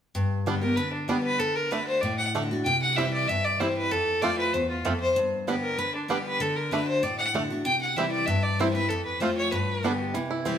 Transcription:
0.15 0.75 G2 medium
0.46 0.62 D3 medium
0.46 0.62 G3 medium
0.46 0.54 G3 medium
0.46 0.54 B3 medium
0.46 0.62 B3 medium
0.46 0.54 D4 medium
0.46 0.60 G4 medium
0.61 0.78 B3 soft
0.61 0.77 G4 soft
0.61 0.78 A#4 medium
0.76 1.07 D3 medium
0.76 0.92 B4 medium
0.93 1.10 D4 soft
1.08 1.38 D3 medium
1.08 1.39 G3 medium
1.08 1.16 G3 medium
1.08 1.39 B3 medium
1.08 1.16 B3 medium
1.08 1.16 D4 medium
1.08 1.23 G4 medium
1.08 1.39 G4 medium
1.23 1.41 B4 loud
1.40 1.70 D3 medium
1.40 1.57 A4 medium
1.56 1.73 A#4 medium
1.71 2.01 D3 medium
1.71 2.01 A3 medium
1.71 1.79 A3 medium
1.71 2.02 D4 medium
1.71 1.75 D4 medium
1.71 2.02 F#4 medium
1.71 1.86 B4 medium
1.87 2.03 C5 medium
2.01 2.62 A2 medium
2.01 2.18 D5 medium
2.18 2.28 F#5 medium
2.34 2.50 D3 medium
2.34 2.50 A3 medium
2.34 2.42 A3 medium
2.34 2.50 D4 medium
2.34 2.38 D4 medium
2.34 2.50 F#4 medium
2.51 2.66 D4 soft
2.51 2.65 F#4 medium
2.65 3.25 C3 medium
2.65 2.80 G5 medium
2.82 2.98 F#5 medium
2.97 3.27 E3 medium
2.97 3.04 G3 medium
2.97 3.27 G3 medium
2.97 3.04 C4 medium
2.97 3.27 C4 medium
2.97 3.04 E4 medium
2.97 3.27 E4 medium
2.97 3.13 E5 medium
3.13 3.30 D5 medium
3.28 3.88 G2 medium
3.28 3.46 E5 medium
3.44 3.62 D5 medium
3.60 3.89 E3 medium
3.60 3.67 G3 medium
3.60 3.90 G3 medium
3.60 3.67 C4 medium
3.60 3.90 C4 medium
3.60 3.67 E4 medium
3.60 3.90 E4 medium
3.60 3.76 C5 medium
3.77 3.93 B4 loud
3.91 4.50 F2 medium
3.91 4.24 A4 medium
4.22 4.52 F3 medium
4.22 4.52 A3 medium
4.22 4.30 A3 medium
4.22 4.52 C4 medium
4.22 4.30 C4 medium
4.22 4.53 F4 medium
4.22 4.30 F4 medium
4.22 4.38 D5 medium
4.38 4.55 B4 medium
4.53 4.83 E2 medium
4.53 4.69 C5 medium
4.70 4.86 F4 medium
4.85 5.14 F2 medium
4.85 4.92 A3 medium
4.85 4.92 C4 medium
4.85 4.92 F4 medium
4.85 5.00 A4 medium
5.00 5.15 C5 loud
5.16 5.75 G2 medium
5.47 5.77 D3 medium
5.47 5.54 G3 medium
5.47 5.77 G3 medium
5.47 5.55 B3 medium
5.47 5.77 B3 medium
5.47 5.55 D4 medium
5.47 5.77 G4 medium
5.63 5.80 A#4 medium
5.78 6.07 D3 medium
5.78 5.94 B4 loud
5.95 6.12 D4 soft
6.08 6.39 D3 medium
6.08 6.39 G3 medium
6.08 6.17 G3 medium
6.08 6.39 B3 medium
6.08 6.17 B3 medium
6.08 6.17 D4 medium
6.08 6.39 G4 medium
6.08 6.26 G4 medium
6.27 6.43 B4 loud
6.40 6.70 D3 medium
6.40 6.58 A4 medium
6.56 6.74 A#4 medium
6.71 7.01 D3 medium
6.71 7.02 A3 medium
6.71 6.79 A3 medium
6.71 7.02 D4 medium
6.71 6.75 D4 medium
6.71 7.02 F#4 medium
6.71 6.87 B4 medium
6.88 7.04 C5 medium
7.03 7.62 A2 medium
7.03 7.18 D5 medium
7.18 7.28 F#5 loud
7.34 7.49 D3 medium
7.34 7.50 A3 medium
7.34 7.42 A3 medium
7.34 7.50 D4 medium
7.34 7.38 D4 medium
7.34 7.49 F#4 medium
7.50 7.66 D4 medium
7.50 7.65 F#4 medium
7.65 8.25 C3 medium
7.65 7.80 G5 medium
7.81 7.98 F#5 medium
7.96 8.26 E3 medium
7.96 8.27 G3 medium
7.96 8.04 G3 medium
7.96 8.27 C4 medium
7.96 8.05 C4 medium
7.96 8.27 E4 medium
7.96 8.05 E4 medium
7.96 8.11 E5 medium
8.12 8.28 D5 medium
8.26 8.87 G2 medium
8.26 8.45 E5 medium
8.43 8.61 D5 medium
8.59 8.74 E3 medium
8.59 8.75 G3 medium
8.59 8.67 G3 medium
8.59 8.75 C4 medium
8.59 8.67 C4 medium
8.59 8.74 E4 medium
8.59 8.67 E4 medium
8.59 8.73 C5 medium
8.74 8.90 C4 soft
8.74 8.90 E4 medium
8.74 8.91 B4 loud
8.89 9.50 F2 medium
8.89 9.05 A4 medium
9.05 9.22 B4 medium
9.20 9.51 F3 medium
9.20 9.51 A3 medium
9.20 9.29 A3 medium
9.20 9.51 C4 medium
9.20 9.29 C4 medium
9.20 9.52 F4 medium
9.20 9.29 F4 medium
9.20 9.37 C5 medium
9.37 9.52 C#5 loud
9.52 10.12 G2 medium
9.52 10.04 B4 medium
9.83 10.13 D3 medium
9.83 10.14 G3 medium
9.83 9.91 G3 medium
9.83 10.14 B3 medium
9.83 9.92 B3 medium
9.83 9.92 D4 medium
9.83 10.14 G4 medium
10.14 10.58 C3 medium
10.14 10.58 E3 medium
10.31 10.58 E4 medium
10.45 10.58 E3 medium
10.45 10.58 G3 medium
10.45 10.58 C4 medium
10.45 10.58 E4 medium

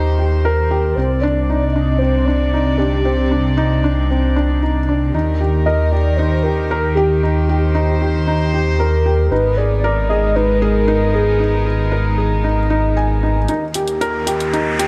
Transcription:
0.00 0.94 D#2 medium
0.00 0.93 D#3 medium
0.00 0.99 D#4 medium
0.00 0.19 G4 medium
0.00 0.93 G4 medium
0.00 0.45 A#4 medium
0.00 0.95 C5 medium
0.19 0.43 G4 medium
0.44 0.96 A#4 medium
0.44 0.70 A#4 medium
0.71 0.96 G4 medium
0.95 5.12 C2 medium
0.95 5.10 C3 medium
0.95 1.22 C4 medium
0.95 5.11 C4 medium
0.95 1.23 C5 loud
0.95 5.11 D5 medium
1.21 1.48 D4 medium
1.21 1.74 D5 loud
1.50 1.64 D#4 medium
1.72 2.00 D4 medium
1.72 1.98 D#5 medium
1.99 2.26 C4 medium
1.99 2.27 C5 medium
2.25 2.52 D4 medium
2.25 2.79 D5 medium
2.53 2.78 D#4 medium
2.78 3.04 D4 medium
2.78 3.31 G4 medium
3.05 3.20 C4 medium
3.31 3.56 D4 medium
3.57 3.82 D#4 medium
3.84 4.09 D4 medium
4.10 4.35 C4 medium
4.36 4.61 D4 medium
4.62 4.77 D#4 medium
4.89 5.13 D4 medium
5.14 9.29 D#2 medium
5.14 9.28 D#3 medium
5.14 5.39 D#4 medium
5.14 9.28 G4 medium
5.14 7.21 A#4 medium
5.41 5.65 G4 medium
5.66 5.91 A#4 medium
5.66 5.93 D#5 medium
5.92 6.17 G4 medium
5.92 6.18 D5 medium
6.17 6.34 D#4 medium
6.17 6.44 C5 loud
6.43 6.70 G4 medium
6.43 6.97 A#4 medium
6.71 6.96 A#4 medium
6.95 8.00 G4 medium
6.95 7.22 G4 medium
7.23 7.48 D#4 medium
7.23 9.29 C5 medium
7.49 7.74 G4 medium
7.75 8.00 D#4 medium
8.02 8.26 G4 medium
8.27 8.52 D#4 medium
8.53 8.78 G4 medium
8.79 9.28 A#4 medium
8.79 9.04 A#4 medium
9.06 9.30 G4 medium
9.31 13.46 G#1 medium
9.31 13.45 G#3 medium
9.31 13.45 B3 medium
9.31 9.46 D#4 medium
9.31 13.46 D#4 medium
9.31 13.45 A#4 medium
9.31 9.58 B4 medium
9.57 9.83 G#4 medium
9.57 10.09 D5 loud
9.84 10.09 A#4 medium
10.09 10.35 G#4 medium
10.09 10.37 D#5 loud
10.36 10.61 D#4 medium
10.36 10.64 B4 medium
10.62 10.87 G#4 medium
10.62 11.16 A#4 medium
10.88 11.13 D#4 medium
11.14 11.39 G#4 medium
11.14 11.67 G#4 medium
11.40 11.65 D#4 medium
11.66 11.91 G#4 medium
11.92 12.17 A#4 medium
12.18 12.43 G#4 medium
12.44 12.59 D#4 medium
12.70 12.95 D#4 medium
12.97 13.22 G#5 medium
13.23 13.38 D#4 medium
13.48 14.88 D#2 medium
13.48 14.88 D#3 medium
13.48 13.64 D#4 medium
13.48 14.88 G4 medium
13.48 14.88 A#4 medium
13.48 closed hi-hat soft
13.48 riser medium
13.74 14.00 G4 medium
13.74 closed hi-hat medium
13.88 closed hi-hat soft
14.01 14.26 A#4 medium
14.01 closed hi-hat soft
14.27 14.52 G4 medium
14.27 closed hi-hat medium
14.40 closed hi-hat soft
14.53 14.78 D#4 medium
14.53 closed hi-hat soft
14.79 14.88 G4 medium
14.79 closed hi-hat medium

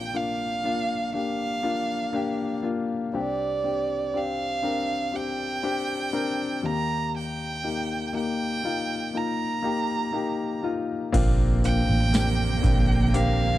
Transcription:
0.00 3.10 A#1 soft
0.00 3.11 A#2 soft
0.00 0.14 A#3 medium
0.00 0.14 D4 medium
0.00 0.15 F4 medium
0.00 1.15 G4 medium
0.00 0.17 G5 medium
0.14 0.62 A#3 medium
0.14 0.62 D4 medium
0.14 0.62 F4 medium
0.14 1.15 F5 medium
0.64 1.12 A#3 medium
0.64 1.12 D4 medium
0.64 1.12 F4 medium
1.14 1.61 A#3 medium
1.14 1.62 D4 soft
1.14 1.62 G4 medium
1.14 2.61 F5 medium
1.63 2.11 A#3 medium
1.63 2.11 D4 medium
1.63 2.12 F4 medium
2.13 2.61 A#3 medium
2.13 2.62 D4 medium
2.13 2.62 G4 medium
2.63 3.11 A#3 medium
2.63 3.11 D4 medium
2.63 3.12 F4 medium
3.13 6.60 C2 soft
3.13 6.60 C3 soft
3.13 3.61 C4 medium
3.13 3.62 D4 medium
3.13 3.62 G4 medium
3.13 4.18 D5 medium
3.64 4.12 C4 soft
3.64 4.12 D4 soft
3.64 4.12 G4 medium
4.14 4.61 C4 medium
4.14 4.62 D4 soft
4.14 4.62 G4 medium
4.14 5.17 F5 medium
4.62 5.11 C4 medium
4.62 5.11 D4 medium
4.62 5.12 A#4 medium
5.12 5.61 C4 medium
5.12 5.61 D4 soft
5.12 5.62 G4 medium
5.12 6.67 G5 medium
5.63 6.11 C4 medium
5.63 6.11 D4 medium
5.63 6.12 G4 medium
6.13 6.61 C4 medium
6.13 6.61 D4 medium
6.13 6.62 A#4 medium
6.63 10.60 D#2 soft
6.63 10.60 D#3 soft
6.63 7.59 A#3 medium
6.63 7.59 D#4 soft
6.63 7.59 G4 medium
6.63 7.15 A#5 medium
7.17 8.12 G5 medium
7.64 8.12 A#3 soft
7.64 8.12 D#4 soft
7.64 8.12 G4 soft
8.13 8.61 A#3 medium
8.13 8.61 D#4 medium
8.13 8.62 G4 medium
8.13 9.18 G5 medium
8.64 9.12 A#3 medium
8.64 9.12 D#4 medium
8.64 9.12 F4 medium
9.14 9.61 A#3 soft
9.14 9.62 D#4 soft
9.14 9.62 F4 medium
9.14 10.65 A#5 medium
9.62 10.11 A#3 medium
9.62 10.12 D#4 medium
9.62 10.12 G4 medium
10.13 10.61 A#3 medium
10.13 10.61 D#4 medium
10.13 10.62 G4 medium
10.63 11.11 A#3 medium
10.63 11.11 D#4 medium
10.63 11.12 F4 medium
11.12 11.85 A#1 medium
11.12 13.58 F2 medium
11.12 12.60 C3 medium
11.12 13.58 D3 medium
11.12 11.61 A#3 loud
11.12 13.58 A#3 medium
11.12 11.61 C4 loud
11.12 11.61 D4 medium
11.12 11.61 F4 loud
11.12 kick loud
11.12 open hi-hat medium
11.12 crash medium
11.63 12.11 A#3 medium
11.63 12.11 C4 medium
11.63 12.11 D4 medium
11.63 12.12 F4 medium
11.63 13.17 G5 loud
11.63 open hi-hat medium
11.89 12.60 A1 medium
12.13 12.61 A#3 medium
12.13 12.61 C4 medium
12.13 12.62 D4 medium
12.13 12.62 G4 medium
12.13 snare medium
12.13 open hi-hat medium
12.13 tambourine medium
12.62 13.58 A#1 loud
12.62 13.11 A#3 medium
12.62 13.11 C4 medium
12.62 13.11 D4 medium
12.62 13.11 G4 medium
12.62 kick medium
12.62 open hi-hat medium
13.14 13.58 A#3 medium
13.14 13.58 C4 medium
13.14 13.58 D4 medium
13.14 13.58 G4 loud
13.14 13.58 F5 loud
13.14 open hi-hat loud

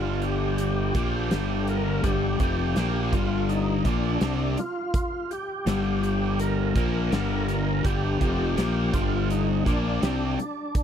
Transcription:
0.00 0.91 G1 medium
0.00 0.93 G2 medium
0.00 0.94 D3 medium
0.00 0.94 G3 medium
0.00 0.25 F4 loud
0.22 0.56 G4 medium
0.22 closed hi-hat medium
0.58 1.70 G4 medium
0.58 closed hi-hat medium
0.94 1.29 A#1 medium
0.94 1.30 A#2 medium
0.94 1.30 F3 medium
0.94 1.30 A#3 medium
0.94 kick medium
0.94 closed hi-hat medium
1.30 2.00 G1 medium
1.30 2.01 G2 medium
1.30 2.02 D3 medium
1.30 2.03 G3 loud
1.30 snare loud
1.30 closed hi-hat medium
1.67 2.05 A#4 medium
1.67 closed hi-hat medium
2.03 2.37 G1 medium
2.03 2.38 G2 medium
2.03 2.39 D3 medium
2.03 2.39 G3 medium
2.03 2.39 G4 loud
2.03 kick loud
2.03 closed hi-hat medium
2.40 2.74 F1 medium
2.40 2.75 F2 medium
2.40 2.75 C3 medium
2.40 2.76 F3 medium
2.40 3.15 G4 loud
2.40 kick medium
2.40 closed hi-hat medium
2.76 3.10 A#1 medium
2.76 3.12 A#2 medium
2.76 3.12 F3 medium
2.76 3.12 A#3 medium
2.76 snare medium
2.76 closed hi-hat medium
3.13 3.81 G1 loud
3.13 3.84 G2 medium
3.13 3.84 D3 medium
3.13 3.85 G3 loud
3.13 3.50 F4 medium
3.13 kick medium
3.13 closed hi-hat medium
3.49 3.86 D#4 medium
3.49 closed hi-hat medium
3.85 4.19 A#1 medium
3.85 4.20 A#2 medium
3.85 4.21 F3 medium
3.85 4.21 A#3 medium
3.85 4.61 D4 loud
3.85 kick medium
3.85 closed hi-hat medium
4.21 4.55 C2 medium
4.21 4.56 C3 loud
4.21 4.57 G3 loud
4.21 4.57 C4 medium
4.21 snare loud
4.21 closed hi-hat medium
4.57 5.33 F4 medium
4.57 closed hi-hat medium
4.94 kick loud
4.94 closed hi-hat medium
5.31 6.01 G4 medium
5.31 closed hi-hat medium
5.67 6.71 G1 medium
5.67 6.74 G2 medium
5.67 6.74 D3 medium
5.67 6.75 G3 loud
5.67 snare loud
5.67 closed hi-hat medium
6.02 6.40 G4 medium
6.02 closed hi-hat medium
6.39 7.47 A#4 medium
6.39 closed hi-hat medium
6.75 7.09 A#1 medium
6.75 7.10 A#2 medium
6.75 7.11 F3 medium
6.75 7.11 A#3 medium
6.75 kick medium
6.75 closed hi-hat medium
7.12 7.80 G1 medium
7.12 7.83 G2 medium
7.12 7.83 D3 medium
7.12 7.84 G3 medium
7.12 snare loud
7.12 closed hi-hat medium
7.48 7.85 A#4 medium
7.48 closed hi-hat medium
7.84 8.18 G1 medium
7.84 8.19 G2 medium
7.84 8.20 D3 medium
7.84 8.20 G3 loud
7.84 8.20 G4 medium
7.84 kick loud
7.84 closed hi-hat medium
8.21 8.55 F1 medium
8.21 8.56 F2 medium
8.21 8.56 C3 medium
8.21 8.57 F3 medium
8.21 8.96 G4 medium
8.21 kick medium
8.21 closed hi-hat medium
8.57 8.90 A#1 medium
8.57 8.92 A#2 medium
8.57 8.93 F3 medium
8.57 8.93 A#3 medium
8.57 snare loud
8.57 closed hi-hat medium
8.93 9.62 G1 medium
8.93 9.64 G2 medium
8.93 9.65 D3 medium
8.93 9.65 G3 loud
8.93 9.31 F4 medium
8.93 kick medium
8.93 closed hi-hat medium
9.30 9.64 D#4 medium
9.30 closed hi-hat medium
9.66 10.00 A#1 medium
9.66 10.01 A#2 medium
9.66 10.02 F3 medium
9.66 10.02 A#3 loud
9.66 10.35 D4 medium
9.66 kick medium
9.66 closed hi-hat soft
10.02 10.36 C2 medium
10.02 10.37 C3 medium
10.02 10.38 G3 medium
10.02 10.38 C4 loud
10.02 snare loud
10.02 closed hi-hat medium
10.38 10.83 D4 medium
10.38 closed hi-hat medium
10.75 kick loud
10.75 closed hi-hat medium

